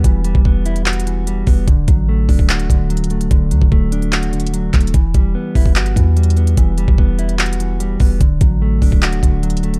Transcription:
0.00 0.23 G3 medium
0.00 0.44 B3 medium
0.00 0.25 F#4 loud
0.04 0.34 E1 loud
0.04 1.05 E3 medium
0.04 kick loud
0.04 closed hi-hat medium
0.24 1.26 G3 medium
0.24 closed hi-hat medium
0.35 1.43 E1 loud
0.35 kick medium
0.45 1.46 B3 medium
0.45 kick loud
0.66 0.85 E4 medium
0.66 closed hi-hat medium
0.76 closed hi-hat medium
0.86 1.67 F#4 loud
0.86 clap loud
0.86 closed hi-hat soft
0.93 closed hi-hat medium
1.00 closed hi-hat medium
1.06 1.68 E3 medium
1.06 closed hi-hat medium
1.27 1.68 G3 medium
1.27 closed hi-hat medium
1.47 1.67 E1 loud
1.47 1.68 B3 medium
1.47 kick loud
1.47 open hi-hat medium
1.68 1.87 D1 loud
1.68 2.69 D3 medium
1.68 kick loud
1.68 closed hi-hat medium
1.88 2.27 A1 loud
1.88 2.89 F#3 medium
1.88 kick loud
1.88 closed hi-hat medium
2.09 3.09 A3 medium
2.29 2.68 D1 loud
2.29 3.31 D4 medium
2.29 kick medium
2.29 open hi-hat medium
2.39 kick medium
2.49 3.51 F#4 loud
2.49 clap loud
2.49 closed hi-hat medium
2.60 closed hi-hat medium
2.70 3.02 D1 loud
2.70 3.30 D3 medium
2.70 kick medium
2.70 closed hi-hat medium
2.90 3.50 F#3 medium
2.90 closed hi-hat medium
2.97 3.29 C#1 loud
2.97 closed hi-hat medium
3.04 closed hi-hat medium
3.10 3.70 A3 medium
3.10 closed hi-hat soft
3.10 open hi-hat medium
3.21 closed hi-hat medium
3.31 3.53 D1 loud
3.31 4.32 D3 medium
3.31 kick loud
3.31 closed hi-hat medium
3.51 3.61 D2 loud
3.51 4.52 F#3 medium
3.51 closed hi-hat medium
3.62 4.70 D1 loud
3.62 kick medium
3.72 4.73 A3 medium
3.72 kick loud
3.92 4.94 D4 medium
3.92 closed hi-hat medium
4.02 closed hi-hat soft
4.12 4.94 F#4 loud
4.12 clap loud
4.12 closed hi-hat medium
4.23 closed hi-hat medium
4.33 4.94 D3 medium
4.33 closed hi-hat soft
4.40 closed hi-hat medium
4.47 closed hi-hat medium
4.54 4.94 F#3 medium
4.54 closed hi-hat medium
4.73 4.93 D1 loud
4.73 4.94 A3 medium
4.73 kick loud
4.73 clap medium
4.73 closed hi-hat soft
4.73 open hi-hat medium
4.81 closed hi-hat medium
4.87 closed hi-hat medium
4.94 5.14 E1 loud
4.94 5.95 E3 medium
4.94 kick loud
4.94 closed hi-hat medium
5.14 5.34 E1 loud
5.14 6.16 G3 medium
5.14 kick loud
5.14 closed hi-hat medium
5.35 6.36 B3 medium
5.55 5.77 E1 loud
5.55 5.76 E4 medium
5.55 kick medium
5.55 open hi-hat medium
5.66 kick medium
5.76 5.95 G1 loud
5.76 6.78 F#4 loud
5.76 clap loud
5.76 closed hi-hat medium
5.86 closed hi-hat medium
5.96 6.55 E2 loud
5.96 6.56 E3 medium
5.96 kick medium
5.96 closed hi-hat medium
6.17 6.77 G3 medium
6.17 closed hi-hat medium
6.23 closed hi-hat medium
6.30 closed hi-hat medium
6.37 6.97 B3 medium
6.37 closed hi-hat soft
6.37 open hi-hat medium
6.47 closed hi-hat medium
6.57 6.87 E1 loud
6.57 7.58 E3 medium
6.57 kick loud
6.57 closed hi-hat medium
6.78 7.79 G3 medium
6.78 closed hi-hat medium
6.88 7.96 E1 loud
6.88 kick medium
6.98 7.99 B3 medium
6.98 kick loud
7.19 7.38 E4 medium
7.19 closed hi-hat medium
7.29 closed hi-hat medium
7.39 8.21 F#4 loud
7.39 clap loud
7.39 closed hi-hat soft
7.46 closed hi-hat medium
7.53 closed hi-hat medium
7.59 8.21 E3 medium
7.59 closed hi-hat medium
7.80 8.21 G3 medium
7.80 closed hi-hat medium
8.00 8.20 E1 loud
8.00 8.21 B3 medium
8.00 kick loud
8.00 open hi-hat soft
8.20 8.40 D1 loud
8.20 9.22 D3 medium
8.20 kick loud
8.20 closed hi-hat medium
8.41 8.80 A1 loud
8.41 9.42 F#3 medium
8.41 kick loud
8.41 closed hi-hat medium
8.62 9.62 A3 medium
8.82 9.21 D1 loud
8.82 9.79 D4 medium
8.82 kick medium
8.82 open hi-hat medium
8.92 kick medium
9.02 9.79 F#4 loud
9.02 clap loud
9.02 closed hi-hat medium
9.13 closed hi-hat medium
9.23 9.55 D1 loud
9.23 9.79 D3 medium
9.23 kick medium
9.23 closed hi-hat medium
9.43 9.79 F#3 medium
9.43 closed hi-hat medium
9.50 9.79 C#1 loud
9.50 closed hi-hat medium
9.57 closed hi-hat medium
9.63 9.79 A3 medium
9.63 closed hi-hat soft
9.63 open hi-hat medium
9.74 closed hi-hat medium

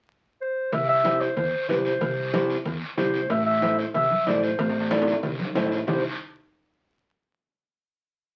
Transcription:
0.41 0.75 C5 medium
0.72 1.24 C2 loud
0.72 0.88 E5 medium
0.72 cowbell loud
0.72 high conga soft
0.72 low conga medium
0.72 long guiro medium
0.89 1.22 E5 loud
1.04 1.27 E4 medium
1.04 1.27 G4 medium
1.04 1.27 C5 medium
1.04 cowbell medium
1.04 high conga medium
1.04 short guiro medium
1.21 1.36 C5 medium
1.21 short guiro medium
1.36 1.49 E2 medium
1.36 1.67 C5 medium
1.36 cowbell medium
1.36 high conga soft
1.36 low conga medium
1.36 long guiro medium
1.69 1.95 C2 medium
1.69 1.91 E4 medium
1.69 1.92 G4 medium
1.69 1.76 B4 medium
1.69 1.92 C5 medium
1.69 cowbell medium
1.69 high conga medium
1.69 low conga medium
1.69 short guiro medium
1.85 2.46 C5 medium
1.85 short guiro medium
2.01 2.53 C2 loud
2.01 cowbell loud
2.01 high conga soft
2.01 low conga medium
2.01 long guiro medium
2.33 2.56 E4 medium
2.33 2.56 G4 medium
2.33 2.56 C5 loud
2.33 cowbell medium
2.33 high conga loud
2.33 short guiro medium
2.50 short guiro medium
2.65 2.78 E2 loud
2.65 cowbell medium
2.65 high conga soft
2.65 low conga medium
2.65 long guiro medium
2.97 3.23 C2 medium
2.97 3.20 E4 medium
2.97 3.20 G4 medium
2.97 3.21 C5 medium
2.97 3.32 C5 medium
2.97 cowbell medium
2.97 high conga medium
2.97 low conga medium
2.97 low timbale medium
2.97 short guiro medium
3.14 short guiro medium
3.30 3.81 A1 loud
3.30 3.45 E5 medium
3.30 cowbell loud
3.30 high conga soft
3.30 long guiro medium
3.46 3.76 E5 loud
3.62 3.85 E4 medium
3.62 3.85 A4 medium
3.62 3.85 C5 medium
3.62 cowbell medium
3.62 high conga medium
3.62 short guiro medium
3.79 3.86 C5 medium
3.79 short guiro medium
3.94 4.07 C2 loud
3.94 4.29 E5 loud
3.94 cowbell medium
3.94 high conga soft
3.94 low conga medium
3.94 long guiro medium
4.11 high conga medium
4.26 4.52 A1 medium
4.26 4.49 E4 medium
4.26 4.50 A4 medium
4.26 4.50 C5 medium
4.26 4.43 D5 medium
4.26 cowbell medium
4.26 high conga medium
4.26 low conga medium
4.26 short guiro medium
4.43 5.04 C5 medium
4.43 short guiro medium
4.59 5.10 A1 loud
4.59 cowbell loud
4.59 high conga soft
4.59 low conga medium
4.59 high timbale medium
4.59 long guiro medium
4.69 high timbale medium
4.80 high timbale medium
4.91 5.14 E4 medium
4.91 5.14 A4 medium
4.91 5.14 D5 loud
4.91 cowbell medium
4.91 high conga medium
4.91 low timbale medium
4.91 short guiro medium
5.02 high timbale medium
5.07 short guiro medium
5.12 high timbale medium
5.23 5.36 C2 medium
5.23 cowbell medium
5.23 high conga soft
5.23 low conga medium
5.23 low timbale medium
5.23 long guiro medium
5.39 high conga medium
5.45 low timbale medium
5.55 5.81 A1 medium
5.55 5.78 E4 medium
5.55 5.78 A4 medium
5.55 5.78 C5 medium
5.55 cowbell medium
5.55 high conga medium
5.55 low conga medium
5.55 low timbale medium
5.55 short guiro medium
5.67 low timbale medium
5.72 short guiro medium
5.77 low timbale medium
5.87 6.02 C2 loud
5.87 6.03 E4 medium
5.87 6.03 G4 medium
5.87 6.03 C5 medium
5.87 low conga loud
5.87 low timbale loud
5.87 long guiro loud

